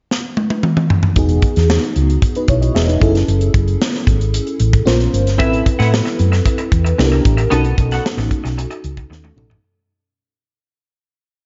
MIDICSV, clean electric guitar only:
0, 0, Header, 1, 3, 480
1, 0, Start_track
1, 0, Key_signature, 4, "major"
1, 0, Tempo, 529568
1, 1054, Time_signature, 4, 2, 24, 8
1, 10386, End_track
2, 0, Start_track
2, 0, Title_t, "Clean electric guitar"
2, 0, Program_c, 0, 27
2, 4880, Note_on_c, 0, 60, 68
2, 4885, Note_on_c, 0, 64, 79
2, 4887, Note_on_c, 0, 71, 77
2, 4891, Note_on_c, 0, 76, 74
2, 5106, Note_off_c, 0, 60, 0
2, 5109, Note_off_c, 0, 64, 0
2, 5109, Note_off_c, 0, 71, 0
2, 5111, Note_off_c, 0, 76, 0
2, 5247, Note_on_c, 0, 78, 55
2, 5251, Note_on_c, 0, 71, 53
2, 5253, Note_on_c, 0, 64, 48
2, 5255, Note_on_c, 0, 60, 45
2, 5349, Note_off_c, 0, 60, 0
2, 5356, Note_off_c, 0, 64, 0
2, 5360, Note_off_c, 0, 71, 0
2, 5368, Note_off_c, 0, 78, 0
2, 6800, Note_on_c, 0, 59, 77
2, 6805, Note_on_c, 0, 66, 75
2, 6810, Note_on_c, 0, 69, 77
2, 6812, Note_on_c, 0, 75, 78
2, 7026, Note_off_c, 0, 59, 0
2, 7028, Note_off_c, 0, 66, 0
2, 7030, Note_off_c, 0, 69, 0
2, 7031, Note_off_c, 0, 75, 0
2, 7179, Note_on_c, 0, 78, 48
2, 7180, Note_on_c, 0, 69, 47
2, 7190, Note_on_c, 0, 66, 40
2, 7191, Note_on_c, 0, 59, 44
2, 7286, Note_off_c, 0, 59, 0
2, 7288, Note_off_c, 0, 66, 0
2, 7290, Note_off_c, 0, 69, 0
2, 7299, Note_off_c, 0, 78, 0
2, 10386, End_track
3, 0, Start_track
3, 0, Title_t, "Muted clean electric guitar strokes"
3, 5126, Note_on_c, 9, 29, 39
3, 5217, Note_off_c, 9, 29, 0
3, 5360, Note_on_c, 9, 29, 33
3, 5451, Note_off_c, 9, 29, 0
3, 5487, Note_on_c, 9, 29, 36
3, 5577, Note_off_c, 9, 29, 0
3, 5729, Note_on_c, 9, 29, 45
3, 5819, Note_off_c, 9, 29, 0
3, 5851, Note_on_c, 9, 29, 31
3, 5941, Note_off_c, 9, 29, 0
3, 5965, Note_on_c, 9, 29, 33
3, 6055, Note_off_c, 9, 29, 0
3, 6205, Note_on_c, 9, 29, 38
3, 6296, Note_off_c, 9, 29, 0
3, 6330, Note_on_c, 9, 29, 28
3, 6420, Note_off_c, 9, 29, 0
3, 6452, Note_on_c, 9, 29, 31
3, 6542, Note_off_c, 9, 29, 0
3, 6683, Note_on_c, 9, 29, 47
3, 6773, Note_off_c, 9, 29, 0
3, 7053, Note_on_c, 9, 29, 30
3, 7143, Note_off_c, 9, 29, 0
3, 7297, Note_on_c, 9, 29, 37
3, 7388, Note_off_c, 9, 29, 0
3, 7416, Note_on_c, 9, 29, 48
3, 7506, Note_off_c, 9, 29, 0
3, 7647, Note_on_c, 9, 29, 38
3, 7738, Note_off_c, 9, 29, 0
3, 7773, Note_on_c, 9, 29, 33
3, 7864, Note_off_c, 9, 29, 0
3, 7891, Note_on_c, 9, 29, 42
3, 7981, Note_off_c, 9, 29, 0
3, 8133, Note_on_c, 9, 29, 32
3, 8224, Note_off_c, 9, 29, 0
3, 8247, Note_on_c, 9, 29, 29
3, 8337, Note_off_c, 9, 29, 0
3, 8374, Note_on_c, 9, 29, 42
3, 8465, Note_off_c, 9, 29, 0
3, 8611, Note_on_c, 9, 29, 54
3, 8702, Note_off_c, 9, 29, 0
3, 10386, End_track
0, 0, End_of_file